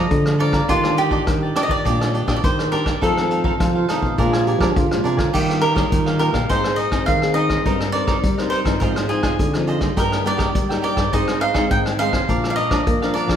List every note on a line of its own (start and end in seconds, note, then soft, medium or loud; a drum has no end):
0.00 0.35 F3 medium
0.00 0.36 A3 medium
0.00 0.40 D#5 medium
0.11 0.67 F2 soft
0.11 0.61 D3 loud
0.11 kick medium
0.11 closed hi-hat medium
0.26 cross-stick medium
0.39 0.59 F3 medium
0.39 0.59 A3 soft
0.39 0.59 D4 medium
0.39 0.53 A4 medium
0.39 0.53 D5 medium
0.39 0.70 D5 loud
0.39 0.53 F5 medium
0.39 0.52 A#5 medium
0.39 closed hi-hat medium
0.53 0.68 D5 soft
0.53 0.68 F5 soft
0.53 0.67 A#5 soft
0.53 kick medium
0.53 cross-stick medium
0.53 closed hi-hat soft
0.68 1.19 D#3 medium
0.68 1.25 D#3 medium
0.68 0.79 A#3 medium
0.68 0.96 D4 medium
0.68 0.80 D4 medium
0.68 0.96 F4 medium
0.68 0.97 G4 medium
0.68 0.80 G4 medium
0.68 0.98 D5 medium
0.68 0.97 D#5 medium
0.68 kick medium
0.68 closed hi-hat medium
0.83 1.24 A#3 medium
0.83 1.24 D4 medium
0.83 1.24 G4 medium
0.83 cross-stick medium
0.97 1.10 D4 medium
0.97 1.52 G4 loud
0.97 1.11 G4 soft
0.97 1.11 D5 medium
0.97 1.11 D#5 medium
0.97 closed hi-hat soft
1.11 1.21 D4 medium
1.11 1.21 G4 medium
1.11 1.22 D5 medium
1.11 1.22 D#5 medium
1.11 kick medium
1.11 closed hi-hat soft
1.27 1.83 A#2 soft
1.27 1.52 D#3 medium
1.27 1.65 A#3 soft
1.27 1.65 D4 medium
1.27 1.66 G4 medium
1.27 kick medium
1.27 cross-stick medium
1.27 closed hi-hat medium
1.43 1.55 G4 soft
1.43 1.56 D5 medium
1.43 1.55 D#5 soft
1.55 1.70 D4 medium
1.55 1.70 G4 medium
1.55 1.62 D5 loud
1.55 1.68 D5 medium
1.55 1.69 D#5 medium
1.55 cross-stick medium
1.55 closed hi-hat medium
1.63 1.70 D#5 medium
1.68 1.82 D#3 medium
1.68 1.84 G4 soft
1.68 1.84 D5 soft
1.68 2.35 D5 medium
1.68 1.84 D#5 soft
1.68 kick medium
1.85 2.23 A#2 loud
1.85 2.41 D#3 medium
1.85 2.13 A#3 medium
1.85 1.99 D4 medium
1.85 2.13 D4 medium
1.85 1.99 G4 medium
1.85 2.13 G4 medium
1.85 1.99 D5 medium
1.85 1.99 D#5 medium
1.85 kick medium
1.85 closed hi-hat medium
2.00 2.13 G4 soft
2.00 2.13 D5 soft
2.00 2.14 D#5 soft
2.00 cross-stick medium
2.14 2.26 D4 soft
2.14 2.27 G4 medium
2.14 2.27 D5 medium
2.14 2.27 D#5 medium
2.14 closed hi-hat soft
2.26 2.40 A#2 medium
2.26 2.67 A#3 medium
2.26 2.37 D4 medium
2.26 2.67 D4 medium
2.26 2.37 G4 medium
2.26 2.68 G4 medium
2.26 2.38 D5 medium
2.26 2.38 D#5 medium
2.26 kick medium
2.26 cross-stick medium
2.36 2.44 D5 medium
2.44 2.99 A#2 soft
2.44 2.93 D#3 loud
2.44 2.74 C5 medium
2.44 kick medium
2.44 closed hi-hat medium
2.59 cross-stick medium
2.59 closed hi-hat soft
2.72 2.99 A#3 medium
2.72 2.86 D4 medium
2.72 3.00 D4 medium
2.72 2.86 G4 medium
2.72 3.00 G4 medium
2.72 3.02 A#4 medium
2.72 2.84 D5 medium
2.72 2.85 D#5 medium
2.72 closed hi-hat soft
2.85 3.00 G4 soft
2.85 3.00 D5 soft
2.85 3.00 D#5 soft
2.85 kick medium
2.85 cross-stick medium
3.01 3.57 F2 medium
3.01 3.11 D#3 medium
3.01 3.51 F3 medium
3.01 3.11 A3 medium
3.01 3.11 C4 medium
3.01 3.29 D#4 medium
3.01 3.30 A4 medium
3.01 4.15 A4 medium
3.01 3.30 C5 medium
3.01 3.30 F5 medium
3.01 kick medium
3.01 closed hi-hat medium
3.17 3.56 D#3 medium
3.17 3.56 A3 medium
3.17 3.56 C4 medium
3.17 cross-stick medium
3.17 closed hi-hat soft
3.30 3.43 D#4 soft
3.30 3.44 A4 soft
3.30 3.44 C5 medium
3.30 3.44 F5 medium
3.30 closed hi-hat soft
3.44 3.54 D#4 medium
3.44 3.54 A4 medium
3.44 3.54 C5 medium
3.44 3.54 F5 medium
3.44 kick medium
3.59 4.15 C3 medium
3.59 3.77 D#3 soft
3.59 3.85 F3 medium
3.59 3.77 A3 medium
3.59 3.77 C4 medium
3.59 3.87 F4 medium
3.59 kick medium
3.59 cross-stick medium
3.59 closed hi-hat medium
3.75 3.88 A4 soft
3.75 3.88 C5 soft
3.75 3.88 F5 soft
3.88 4.06 D#3 medium
3.88 4.06 A3 medium
3.88 4.06 C4 medium
3.88 4.02 D#4 medium
3.88 4.19 D#4 medium
3.88 4.02 A4 medium
3.88 4.01 C5 medium
3.88 4.00 F5 medium
3.88 cross-stick medium
3.88 closed hi-hat soft
4.01 4.15 B2 medium
4.01 4.16 A4 soft
4.01 4.16 C5 soft
4.01 4.16 F5 soft
4.01 kick medium
4.18 4.55 A#2 loud
4.18 4.73 A#2 medium
4.18 4.57 F3 medium
4.18 4.57 G#3 medium
4.18 4.31 D4 medium
4.18 4.57 D4 medium
4.18 4.48 F4 medium
4.18 4.31 A#4 medium
4.18 4.32 D5 medium
4.18 4.32 G#5 medium
4.18 kick medium
4.18 closed hi-hat medium
4.33 4.46 A#4 soft
4.33 4.46 D5 soft
4.33 4.46 G#5 soft
4.33 cross-stick medium
4.47 4.59 D4 soft
4.47 4.78 G4 loud
4.47 4.59 A#4 soft
4.47 4.59 D5 medium
4.47 4.60 G#5 medium
4.47 closed hi-hat soft
4.59 4.72 F3 medium
4.59 4.85 F3 medium
4.59 4.85 G#3 medium
4.59 4.70 D4 medium
4.59 4.86 D4 medium
4.59 4.70 A#4 medium
4.59 4.70 D5 medium
4.59 4.70 G#5 medium
4.59 kick medium
4.59 cross-stick medium
4.76 5.31 F2 soft
4.76 4.88 D3 medium
4.76 5.34 F4 medium
4.76 kick medium
4.76 closed hi-hat medium
4.91 5.04 A#2 medium
4.91 5.01 F3 medium
4.91 5.01 G#3 medium
4.91 5.01 D4 medium
4.91 cross-stick medium
5.04 5.18 C3 medium
5.04 5.23 F3 medium
5.04 5.24 G#3 soft
5.04 5.18 D4 medium
5.04 5.24 D4 medium
5.04 5.17 A#4 medium
5.04 5.17 D5 medium
5.04 5.16 G#5 medium
5.04 closed hi-hat soft
5.17 5.31 D3 medium
5.17 5.32 A#4 soft
5.17 5.32 D5 soft
5.17 5.31 G#5 soft
5.17 kick medium
5.17 cross-stick medium
5.17 closed hi-hat soft
5.33 5.89 D#3 medium
5.33 5.83 D#3 medium
5.33 5.61 G3 medium
5.33 5.61 A#3 medium
5.33 5.60 F4 medium
5.33 5.61 F4 medium
5.33 5.60 G4 medium
5.33 5.61 G4 medium
5.33 5.61 D#5 medium
5.33 5.61 F5 medium
5.33 kick medium
5.33 crash medium
5.50 cross-stick medium
5.50 closed hi-hat soft
5.61 5.73 F4 soft
5.61 5.74 G4 medium
5.61 6.18 A#4 loud
5.61 5.74 D#5 soft
5.61 5.75 F5 soft
5.61 closed hi-hat soft
5.75 6.15 G3 medium
5.75 6.16 A#3 medium
5.75 5.85 F4 medium
5.75 6.16 F4 soft
5.75 5.85 G4 medium
5.75 5.85 D#5 medium
5.75 5.86 F5 medium
5.75 kick medium
5.75 cross-stick medium
5.91 6.47 A#2 soft
5.91 6.29 D#3 loud
5.91 kick medium
5.91 closed hi-hat medium
6.06 6.19 G4 soft
6.06 6.19 D#5 soft
6.06 6.20 F5 soft
6.06 cross-stick medium
6.19 6.37 G3 medium
6.19 6.37 A#3 medium
6.19 6.34 F4 medium
6.19 6.38 F4 medium
6.19 6.34 G4 medium
6.19 6.50 A#4 medium
6.19 6.33 D#5 medium
6.19 6.32 F5 medium
6.19 closed hi-hat medium
6.33 6.46 A#2 medium
6.33 6.49 G4 soft
6.33 6.48 D#5 soft
6.33 6.48 F5 soft
6.33 kick medium
6.33 cross-stick medium
6.49 6.99 G#2 medium
6.49 7.05 G#3 medium
6.49 6.77 C4 medium
6.49 6.63 D#4 medium
6.49 6.77 D#4 medium
6.49 6.63 G#4 medium
6.49 6.77 G#4 medium
6.49 6.77 C5 medium
6.49 6.63 C5 medium
6.49 6.64 D#5 medium
6.49 kick medium
6.49 closed hi-hat medium
6.64 6.78 G#4 soft
6.64 6.78 C5 soft
6.64 6.78 D#5 medium
6.64 cross-stick medium
6.76 6.91 D#4 medium
6.76 6.91 G#4 medium
6.76 6.91 C5 soft
6.76 7.06 D#5 medium
6.76 6.92 D#5 soft
6.76 closed hi-hat soft
6.91 7.16 C4 medium
6.91 7.17 D#4 medium
6.91 7.01 D#4 medium
6.91 7.17 G#4 medium
6.91 7.02 G#4 medium
6.91 7.02 C5 medium
6.91 7.02 D#5 medium
6.91 kick medium
6.91 cross-stick medium
6.91 closed hi-hat soft
7.06 7.57 D#3 medium
7.06 7.63 D#3 medium
7.06 7.34 F5 medium
7.06 kick medium
7.06 closed hi-hat medium
7.22 7.61 C4 medium
7.22 7.61 D#4 medium
7.22 7.62 G#4 medium
7.22 cross-stick medium
7.34 7.49 D#4 medium
7.34 7.50 G#4 medium
7.34 7.49 C5 medium
7.34 7.89 D#5 loud
7.34 7.48 D#5 medium
7.34 closed hi-hat soft
7.49 7.64 G#4 soft
7.49 7.64 C5 soft
7.49 7.64 D#5 soft
7.49 kick medium
7.49 cross-stick medium
7.65 8.15 G2 medium
7.65 8.21 G3 medium
7.65 7.83 C4 medium
7.65 7.92 D#4 medium
7.65 7.83 D#4 medium
7.65 7.93 A#4 medium
7.65 7.83 A#4 medium
7.65 7.93 C5 medium
7.65 7.94 D#5 medium
7.65 kick medium
7.65 closed hi-hat medium
7.80 cross-stick medium
7.92 8.22 C4 medium
7.92 8.06 D#4 medium
7.92 8.22 D#4 medium
7.92 8.06 A#4 soft
7.92 8.22 A#4 medium
7.92 8.06 C5 medium
7.92 8.47 D5 loud
7.92 8.07 D#5 medium
7.92 closed hi-hat soft
8.07 8.17 D#4 medium
8.07 8.17 A#4 medium
8.07 8.17 C5 medium
8.07 8.17 D#5 medium
8.07 kick medium
8.07 cross-stick medium
8.07 closed hi-hat soft
8.23 8.61 G3 loud
8.23 8.66 G3 soft
8.23 kick medium
8.23 closed hi-hat medium
8.38 8.63 C4 medium
8.38 8.63 D#4 medium
8.38 8.51 A#4 soft
8.38 8.64 A#4 medium
8.38 8.51 C5 soft
8.38 8.51 D#5 medium
8.38 cross-stick medium
8.50 8.65 D#4 medium
8.50 8.65 A#4 medium
8.50 8.58 C5 medium
8.50 8.65 C5 medium
8.50 8.64 D#5 medium
8.50 closed hi-hat soft
8.64 8.78 G2 medium
8.64 9.06 F3 medium
8.64 9.06 C4 medium
8.64 9.06 D#4 medium
8.64 8.80 A#4 soft
8.64 8.80 C5 soft
8.64 8.79 D#5 medium
8.64 kick medium
8.64 cross-stick medium
8.64 closed hi-hat soft
8.80 9.31 G#2 loud
8.80 9.37 G#2 soft
8.80 8.95 F4 medium
8.80 8.95 G#4 medium
8.80 8.88 A#4 medium
8.80 8.95 C5 medium
8.80 8.94 D#5 medium
8.80 kick medium
8.80 closed hi-hat medium
8.96 9.09 G#4 soft
8.96 9.10 C5 soft
8.96 9.09 D#5 soft
8.96 cross-stick medium
8.96 closed hi-hat soft
9.09 9.50 F3 soft
9.09 9.50 C4 soft
9.09 9.50 D#4 medium
9.09 9.22 F4 soft
9.09 9.64 G#4 medium
9.09 9.22 G#4 soft
9.09 9.23 C5 medium
9.09 9.23 D#5 medium
9.09 closed hi-hat soft
9.23 9.33 F4 medium
9.23 9.33 G#4 medium
9.23 9.33 C5 medium
9.23 9.33 D#5 medium
9.23 kick medium
9.23 cross-stick medium
9.39 9.89 D3 medium
9.39 kick medium
9.39 closed hi-hat medium
9.54 9.79 F3 medium
9.54 9.79 C4 medium
9.54 9.79 D#4 medium
9.54 cross-stick medium
9.67 9.81 F4 medium
9.67 9.81 G#4 medium
9.67 9.80 C5 medium
9.67 9.79 D#5 medium
9.67 closed hi-hat soft
9.81 10.21 G3 medium
9.81 10.21 A#3 medium
9.81 10.22 D#4 medium
9.81 9.96 G#4 soft
9.81 9.96 C5 soft
9.81 9.95 D#5 medium
9.81 kick medium
9.81 cross-stick medium
9.81 closed hi-hat soft
9.97 10.47 G2 medium
9.97 10.53 G2 medium
9.97 10.23 G4 medium
9.97 10.23 A#4 medium
9.97 10.26 A#4 medium
9.97 10.25 D#5 medium
9.97 10.25 G5 medium
9.97 kick medium
9.97 closed hi-hat medium
10.12 cross-stick medium
10.12 closed hi-hat soft
10.25 10.53 G3 medium
10.25 10.53 A#3 soft
10.25 10.54 D#4 medium
10.25 10.36 G4 soft
10.25 10.37 A#4 medium
10.25 10.81 D5 loud
10.25 10.37 D#5 medium
10.25 10.37 G5 medium
10.25 closed hi-hat soft
10.37 10.48 G4 medium
10.37 10.48 A#4 medium
10.37 10.49 D#5 medium
10.37 10.49 G5 medium
10.37 kick medium
10.37 cross-stick medium
10.55 11.10 G2 soft
10.55 10.92 G3 medium
10.55 kick medium
10.55 closed hi-hat medium
10.69 11.09 G3 medium
10.69 11.09 A#3 medium
10.69 11.09 D#4 medium
10.69 10.81 A#4 soft
10.69 10.82 D#5 soft
10.69 10.82 G5 soft
10.69 cross-stick medium
10.82 10.97 G4 medium
10.82 10.96 A#4 medium
10.82 11.11 D5 medium
10.82 10.96 D#5 medium
10.82 10.95 G5 medium
10.82 closed hi-hat soft
10.96 11.10 G2 medium
10.96 11.12 A#4 soft
10.96 11.11 D#5 soft
10.96 11.11 G5 soft
10.96 kick medium
10.96 cross-stick medium
11.12 11.68 G#2 medium
11.12 11.62 G#2 loud
11.12 11.52 G#3 medium
11.12 11.52 C4 medium
11.12 11.27 D#4 medium
11.12 11.52 D#4 medium
11.12 11.27 G#4 medium
11.12 11.27 C5 medium
11.12 11.40 D#5 medium
11.12 11.27 D#5 medium
11.12 kick medium
11.12 closed hi-hat medium
11.28 11.39 G#4 soft
11.28 11.40 C5 soft
11.28 11.41 D#5 soft
11.28 cross-stick medium
11.40 11.53 D#4 medium
11.40 11.53 G#4 soft
11.40 11.53 C5 medium
11.40 11.54 D#5 medium
11.40 11.71 F5 medium
11.40 closed hi-hat medium
11.54 11.95 G#3 medium
11.54 11.95 C4 medium
11.54 11.64 D#4 medium
11.54 11.95 D#4 medium
11.54 11.65 G#4 medium
11.54 11.65 C5 medium
11.54 11.65 D#5 medium
11.54 kick medium
11.54 cross-stick medium
11.54 closed hi-hat soft
11.71 12.20 G#2 loud
11.71 12.27 D#3 medium
11.71 11.79 G5 medium
11.71 kick medium
11.71 closed hi-hat medium
11.86 cross-stick medium
11.99 12.24 G#3 medium
11.99 12.24 C4 medium
11.99 12.13 D#4 medium
11.99 12.25 D#4 medium
11.99 12.12 G#4 medium
11.99 12.12 C5 medium
11.99 12.11 D#5 medium
11.99 12.47 F5 loud
11.99 closed hi-hat medium
12.12 12.28 G#4 soft
12.12 12.27 C5 soft
12.12 12.27 D#5 soft
12.12 kick medium
12.12 cross-stick medium
12.28 12.78 A#2 medium
12.28 12.84 A#2 medium
12.28 12.56 F3 medium
12.28 12.57 A#3 medium
12.28 12.56 D4 medium
12.28 12.57 D4 medium
12.28 12.56 A#4 medium
12.28 12.57 D5 medium
12.28 12.57 F5 medium
12.28 kick medium
12.28 closed hi-hat medium
12.44 cross-stick medium
12.50 12.55 F5 medium
12.56 12.70 D4 soft
12.56 12.71 A#4 medium
12.56 12.70 D5 medium
12.56 13.11 D#5 loud
12.56 12.71 F5 medium
12.56 closed hi-hat soft
12.71 12.86 F3 medium
12.71 12.96 A#3 medium
12.71 12.81 D4 medium
12.71 12.97 D4 medium
12.71 12.81 A#4 medium
12.71 12.81 D5 medium
12.71 12.81 F5 medium
12.71 kick medium
12.71 cross-stick medium
12.71 closed hi-hat soft
12.87 13.01 F3 soft
12.87 13.24 A#3 loud
12.87 kick medium
12.87 closed hi-hat medium
13.02 13.36 F3 medium
13.02 13.36 A#3 medium
13.02 13.36 D4 medium
13.02 13.14 A#4 soft
13.02 13.15 D5 soft
13.02 13.15 F5 soft
13.02 cross-stick medium
13.02 closed hi-hat soft
13.14 13.29 D4 medium
13.14 13.28 A#4 medium
13.14 13.36 D5 medium
13.14 13.28 D5 medium
13.14 13.27 F5 medium
13.14 closed hi-hat soft
13.28 13.36 F3 medium
13.28 13.36 A#4 soft
13.28 13.36 D5 soft
13.28 13.36 F5 medium
13.28 kick medium
13.28 cross-stick medium
13.28 closed hi-hat soft